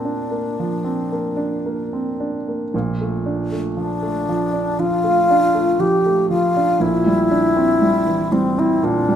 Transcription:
0.00 0.55 A#2 soft
0.00 0.31 A#3 soft
0.00 0.84 C4 soft
0.00 0.05 D4 soft
0.00 2.20 D4 soft
0.05 0.48 D4 soft
0.31 0.74 A#3 soft
0.59 1.02 F3 soft
0.84 1.27 C4 soft
1.12 1.55 A#3 soft
1.37 1.81 D4 soft
1.66 2.09 A#3 soft
1.93 2.37 C4 soft
2.20 2.63 D4 soft
2.48 2.74 A#3 soft
2.74 4.74 A#1 soft
2.74 4.75 A#2 soft
3.01 3.41 A3 soft
3.26 3.66 D4 soft
3.52 3.92 A3 soft
3.75 4.17 F3 soft
3.75 4.81 D4 medium
4.02 4.43 A3 soft
4.29 4.69 F3 soft
4.53 4.94 D4 soft
4.79 5.19 F3 soft
4.79 5.82 F4 medium
5.04 5.44 A3 soft
5.30 5.70 D4 soft
5.54 5.95 A3 soft
5.80 6.20 F3 soft
5.80 6.29 G4 medium
6.06 6.46 A3 soft
6.30 6.71 F3 soft
6.30 6.83 F4 medium
6.56 6.81 D4 soft
6.80 8.79 A#1 soft
6.80 8.80 A#2 soft
6.80 8.34 E4 medium
7.06 7.46 G3 soft
7.31 7.71 D4 soft
7.57 7.97 C4 soft
7.82 8.22 G3 soft
8.07 8.48 E3 soft
8.32 8.73 G3 soft
8.32 8.61 C4 medium
8.58 8.99 C4 soft
8.58 8.86 E4 medium
8.83 9.15 A#2 soft
8.83 9.15 D4 medium
9.09 9.15 G3 soft

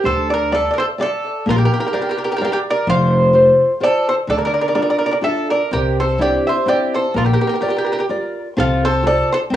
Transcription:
0.04 0.66 D2 medium
0.04 0.50 D4 soft
0.04 0.29 A4 medium
0.04 0.29 C5 medium
0.30 0.52 A#4 medium
0.30 0.50 D5 medium
0.51 0.71 A4 medium
0.51 0.90 D5 soft
0.51 0.69 D5 medium
0.51 0.90 E5 soft
0.51 0.90 F5 soft
0.71 0.78 A#4 medium
0.71 0.77 D5 medium
0.78 0.85 A4 medium
0.78 0.84 C5 medium
0.98 1.36 D5 soft
0.98 1.44 D5 medium
0.98 1.37 E5 soft
0.98 1.37 F5 medium
1.02 1.45 A4 medium
1.46 1.64 A#1 loud
1.46 1.92 A#3 medium
1.46 1.55 A#4 medium
1.50 1.56 F4 medium
1.56 1.64 G4 medium
1.56 1.63 A#4 medium
1.65 1.71 G4 medium
1.65 1.71 A#4 medium
1.73 1.78 G4 soft
1.73 1.78 A#4 medium
1.80 1.85 G4 medium
1.80 1.85 A#4 medium
1.86 1.92 G4 soft
1.86 1.91 A#4 medium
1.93 1.99 G4 soft
1.93 1.99 A#4 medium
1.93 2.31 A#4 soft
1.93 2.31 D5 soft
1.93 2.31 F5 medium
2.01 2.08 G4 soft
2.01 2.07 A#4 soft
2.09 2.16 G4 medium
2.09 2.15 A#4 medium
2.17 2.23 G4 soft
2.17 2.23 A#4 soft
2.24 2.29 G4 medium
2.24 2.30 A#4 medium
2.31 2.35 G4 medium
2.31 2.36 A#4 medium
2.36 2.42 G4 medium
2.36 2.43 A#4 medium
2.41 2.50 G4 medium
2.41 2.78 A#4 medium
2.41 2.78 D5 soft
2.41 2.79 F5 medium
2.45 2.51 A#4 medium
2.52 2.59 G4 medium
2.52 2.58 A#4 medium
2.70 2.88 A#4 medium
2.70 2.90 D5 medium
2.87 3.48 F1 loud
2.87 3.33 F3 medium
2.87 3.78 C5 medium
2.87 3.78 F5 medium
3.33 3.71 F4 medium
3.33 3.71 A4 soft
3.33 3.72 C5 medium
3.80 4.18 F4 soft
3.80 4.19 A4 soft
3.80 4.07 A4 medium
3.80 4.19 C5 medium
3.80 4.09 D5 loud
4.09 4.14 A4 medium
4.09 4.14 C5 medium
4.27 4.46 D2 medium
4.27 4.74 D3 medium
4.27 4.37 A4 medium
4.27 4.37 D5 medium
4.38 4.44 A#4 soft
4.38 4.45 D5 medium
4.45 4.52 A#4 medium
4.45 4.53 D5 medium
4.54 4.60 A#4 medium
4.54 4.60 D5 medium
4.61 4.67 A#4 medium
4.61 4.67 D5 medium
4.68 4.73 A#4 soft
4.68 4.74 D5 medium
4.75 5.13 D4 soft
4.75 5.14 F4 soft
4.75 5.14 A4 medium
4.75 4.81 A#4 medium
4.75 4.81 D5 medium
4.82 4.89 A#4 soft
4.82 4.89 D5 medium
4.90 4.97 A#4 medium
4.90 4.97 D5 medium
4.99 5.05 A#4 soft
4.99 5.05 D5 medium
5.06 5.10 A#4 medium
5.06 5.11 D5 medium
5.12 5.17 A#4 soft
5.12 5.18 D5 medium
5.22 5.61 D4 soft
5.22 5.61 F4 soft
5.22 5.61 A4 soft
5.22 5.48 A4 medium
5.22 5.48 E5 medium
5.50 5.70 A#4 medium
5.50 5.71 D5 medium
5.71 6.34 C2 medium
5.71 6.18 C3 medium
5.71 5.97 G4 medium
5.71 5.97 A#4 medium
6.00 6.19 A4 medium
6.00 6.19 C5 medium
6.18 6.57 C4 medium
6.18 6.58 D4 soft
6.18 6.58 E4 medium
6.18 6.45 G4 medium
6.18 6.45 D5 medium
6.47 6.68 C5 medium
6.47 6.68 E5 medium
6.66 7.05 C4 soft
6.66 7.05 D4 soft
6.66 7.05 E4 medium
6.66 6.92 G4 medium
6.66 6.95 D5 medium
6.94 7.14 A4 medium
6.94 7.16 C5 medium
7.14 7.33 A#1 medium
7.14 7.61 A#3 medium
7.14 7.24 F4 medium
7.14 7.23 A#4 medium
7.25 7.32 G4 soft
7.25 7.32 A#4 soft
7.33 7.40 G4 soft
7.33 7.40 A#4 medium
7.41 7.47 G4 soft
7.41 7.46 A#4 soft
7.47 7.54 G4 medium
7.47 7.53 A#4 medium
7.54 7.60 G4 soft
7.54 7.59 A#4 medium
7.61 8.00 F4 medium
7.61 7.68 G4 soft
7.61 7.67 A#4 soft
7.61 8.00 A#4 soft
7.61 8.01 D5 medium
7.68 7.76 G4 soft
7.68 7.75 A#4 soft
7.76 7.84 G4 medium
7.76 7.83 A#4 soft
7.84 7.91 G4 soft
7.84 7.91 A#4 medium
7.92 7.98 G4 medium
7.92 7.97 A#4 medium
7.98 8.05 G4 soft
7.98 8.04 A#4 medium
8.09 8.47 F4 soft
8.09 8.48 A#4 soft
8.09 8.48 D5 medium
8.57 9.19 C2 loud
8.57 9.03 C4 medium
8.57 8.83 F4 medium
8.57 8.82 A4 medium
8.85 9.04 A4 medium
8.85 9.06 C5 medium
9.03 9.41 F4 soft
9.03 9.41 A4 soft
9.03 9.30 A4 medium
9.03 9.42 C5 soft
9.07 9.30 D5 medium
9.32 9.39 A4 medium
9.32 9.38 C5 medium
9.50 9.56 C2 medium
9.50 9.56 C4 medium

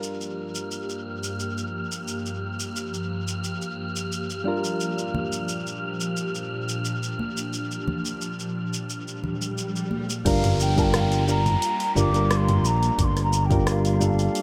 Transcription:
0.00 4.42 G2 medium
0.00 10.22 F3 medium
0.00 4.41 G3 medium
0.00 4.42 A#3 medium
0.00 4.42 D4 medium
0.00 4.43 F4 medium
0.00 10.22 G4 medium
0.00 4.43 A#4 medium
0.00 10.27 F6 medium
0.00 shaker soft
0.21 shaker soft
0.55 shaker medium
0.72 shaker soft
0.90 shaker soft
1.24 shaker medium
1.40 shaker soft
1.58 shaker soft
1.92 shaker medium
2.08 shaker soft
2.26 shaker soft
2.60 shaker medium
2.76 shaker soft
2.94 shaker soft
3.28 shaker medium
3.44 shaker soft
3.62 shaker soft
3.96 shaker medium
4.12 shaker medium
4.30 shaker soft
4.44 10.22 A#2 medium
4.44 9.87 G3 medium
4.44 9.87 D4 medium
4.44 10.22 D4 medium
4.44 9.88 F4 medium
4.44 9.89 A#4 medium
4.64 shaker medium
4.80 shaker soft
4.99 shaker soft
5.14 high conga medium
5.14 low conga medium
5.33 shaker medium
5.49 shaker medium
5.67 shaker soft
6.01 shaker medium
6.17 shaker soft
6.35 shaker soft
6.69 shaker medium
6.85 shaker medium
7.03 shaker soft
7.19 high conga medium
7.37 shaker medium
7.53 shaker soft
7.71 shaker soft
7.87 high conga medium
7.87 low conga medium
8.05 shaker medium
8.22 shaker medium
8.40 shaker soft
8.74 shaker medium
8.89 swell medium
8.89 shaker medium
9.08 shaker soft
9.24 low conga medium
9.42 shaker medium
9.58 shaker medium
9.76 shaker soft
9.91 high conga medium
10.10 shaker medium
10.25 11.55 G1 medium
10.25 10.70 G3 loud
10.25 14.42 G3 medium
10.25 14.42 A#3 medium
10.25 10.71 D4 medium
10.25 14.42 D4 medium
10.25 12.96 F4 medium
10.25 10.71 F4 medium
10.25 10.71 A#4 loud
10.25 10.58 F5 medium
10.25 kick loud
10.25 open hi-hat medium
10.25 downlifter medium
10.25 shaker soft
10.44 mid tom medium
10.44 open hi-hat soft
10.44 shaker soft
10.60 10.80 G5 loud
10.60 shaker medium
10.76 11.23 G3 medium
10.76 11.24 D4 medium
10.76 11.24 F4 medium
10.76 11.25 A#4 loud
10.76 10.84 A5 medium
10.76 kick loud
10.76 open hi-hat soft
10.76 shaker soft
10.83 10.97 G5 loud
10.94 11.01 F5 medium
10.94 cross-stick loud
10.94 mid tom medium
10.94 open hi-hat medium
10.94 shaker soft
11.00 11.25 G5 loud
11.12 open hi-hat soft
11.12 shaker soft
11.27 11.40 G3 medium
11.27 11.40 D4 medium
11.27 11.41 F4 medium
11.27 11.41 A#4 medium
11.27 11.93 A#5 loud
11.27 shaker medium
11.46 mid tom medium
11.46 open hi-hat soft
11.46 shaker soft
11.62 open hi-hat medium
11.62 shaker soft
11.80 open hi-hat soft
11.95 12.64 G1 medium
11.95 12.09 G3 medium
11.95 12.10 D4 medium
11.95 12.10 F4 medium
11.95 12.10 A#4 medium
11.95 12.33 D6 loud
11.95 mid tom medium
11.95 shaker medium
12.12 13.45 G3 medium
12.12 13.46 D4 medium
12.12 13.47 F4 medium
12.12 open hi-hat soft
12.12 shaker soft
12.16 13.47 A#4 medium
12.31 12.38 D6 loud
12.31 cross-stick loud
12.31 open hi-hat medium
12.31 shaker soft
12.37 12.68 C6 loud
12.49 mid tom medium
12.49 open hi-hat soft
12.64 12.89 A#1 medium
12.64 13.00 A#5 loud
12.64 shaker medium
12.83 open hi-hat soft
12.83 shaker soft
12.98 14.28 G1 medium
12.98 14.42 G4 medium
12.98 13.05 D6 medium
12.98 kick loud
12.98 mid tom medium
12.98 open hi-hat medium
12.98 shaker soft
13.04 13.21 C6 loud
13.17 cross-stick soft
13.17 open hi-hat soft
13.17 shaker soft
13.23 13.47 A#5 medium
13.33 shaker medium
13.45 13.70 G5 medium
13.50 13.97 G3 medium
13.50 13.97 D4 medium
13.50 13.97 F4 medium
13.50 13.98 A#4 medium
13.50 kick loud
13.50 mid tom medium
13.50 open hi-hat soft
13.50 shaker soft
13.67 14.42 F5 medium
13.67 cross-stick loud
13.67 open hi-hat medium
13.67 shaker soft
13.85 open hi-hat soft
13.85 shaker soft
13.99 14.42 G3 medium
13.99 14.42 D4 medium
13.99 14.42 F4 medium
13.99 mid tom medium
13.99 shaker medium
14.03 14.42 A4 medium
14.19 open hi-hat soft
14.19 shaker soft
14.35 open hi-hat medium
14.35 shaker soft

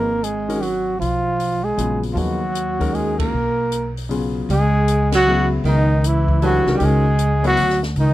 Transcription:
0.00 0.97 G#1 medium
0.00 0.24 A#3 medium
0.00 0.26 A#4 medium
0.23 0.62 G#3 medium
0.23 0.64 G#4 medium
0.23 closed hi-hat soft
0.48 0.61 D#3 medium
0.48 0.61 G#3 medium
0.48 0.61 C#4 medium
0.48 0.61 F#4 medium
0.48 0.61 A#4 medium
0.48 open hi-hat soft
0.60 0.98 F#3 medium
0.60 1.00 F#4 medium
0.60 open hi-hat soft
0.99 1.74 B1 medium
0.99 1.64 F3 medium
0.99 1.66 F4 medium
0.99 open hi-hat soft
1.40 open hi-hat soft
1.63 2.02 G#3 medium
1.63 2.03 G#4 medium
1.77 2.14 A#1 medium
1.77 2.37 C#3 medium
1.77 2.37 F#3 soft
1.77 2.37 B3 soft
1.77 2.37 F4 soft
1.77 2.15 G#4 medium
1.77 closed hi-hat soft
2.03 open hi-hat soft
2.13 3.28 D#2 medium
2.13 2.18 F3 soft
2.13 2.38 F3 soft
2.13 2.94 F#3 medium
2.13 2.39 A#3 soft
2.13 2.39 D#4 soft
2.13 2.17 F4 medium
2.13 2.96 F#4 medium
2.13 2.39 G#4 soft
2.13 open hi-hat soft
2.17 2.39 B4 soft
2.55 closed hi-hat soft
2.79 3.29 D#3 medium
2.79 3.30 G#3 medium
2.79 3.30 C#4 medium
2.79 3.30 F#4 medium
2.79 3.30 A#4 medium
2.79 kick medium
2.79 open hi-hat soft
2.93 3.18 G#3 medium
2.93 3.19 G#4 medium
2.93 open hi-hat soft
3.18 3.92 A#3 medium
3.18 3.93 A#4 medium
3.18 kick medium
3.18 ride medium
3.33 4.45 B1 medium
3.72 closed hi-hat soft
3.97 open hi-hat soft
4.09 4.48 C#3 medium
4.09 4.49 F#3 medium
4.09 4.49 B3 medium
4.09 4.49 F4 medium
4.09 4.49 G#4 medium
4.09 open hi-hat soft
4.49 5.61 C#2 medium
4.49 5.09 G#3 medium
4.49 5.10 G#4 medium
4.49 open hi-hat soft
4.88 closed hi-hat medium
5.12 5.50 F#3 medium
5.12 5.50 F#4 loud
5.12 snare medium
5.12 ride medium
5.27 5.85 C#3 medium
5.27 5.85 F#3 medium
5.27 5.85 B3 medium
5.27 5.86 E4 medium
5.27 5.86 G#4 medium
5.64 6.62 C#2 medium
5.64 6.07 D#3 medium
5.64 open hi-hat soft
5.68 6.09 D#4 medium
6.04 6.42 E3 medium
6.04 6.44 E4 medium
6.04 closed hi-hat medium
6.28 kick medium
6.42 6.64 E3 medium
6.42 6.72 F#3 medium
6.42 6.65 A3 medium
6.42 6.65 D4 medium
6.42 6.73 F#4 medium
6.42 6.65 G4 medium
6.42 6.65 B4 medium
6.42 open hi-hat soft
6.66 6.79 C2 medium
6.66 6.79 D#3 medium
6.66 6.80 G#3 medium
6.66 6.80 C#4 medium
6.66 6.81 F#4 medium
6.66 6.81 A#4 medium
6.66 snare soft
6.74 6.83 G3 medium
6.74 6.87 G4 medium
6.80 7.53 C#2 medium
6.80 7.03 D#3 medium
6.80 7.03 G#3 medium
6.80 7.45 G#3 medium
6.80 7.04 C#4 medium
6.80 7.04 F#4 medium
6.80 7.04 A#4 medium
6.80 open hi-hat soft
6.85 7.46 G#4 medium
7.19 closed hi-hat medium
7.43 7.56 F#3 medium
7.43 7.81 F#3 medium
7.43 7.56 B3 medium
7.43 7.56 E4 medium
7.43 7.56 A#4 medium
7.43 7.57 C#5 medium
7.43 open hi-hat soft
7.48 7.82 F#4 loud
7.57 7.94 D2 medium
7.57 open hi-hat soft
7.70 snare soft
7.83 snare soft
7.96 8.14 C#2 medium
7.96 8.14 D#3 medium
7.96 8.14 D#4 medium
7.96 open hi-hat soft

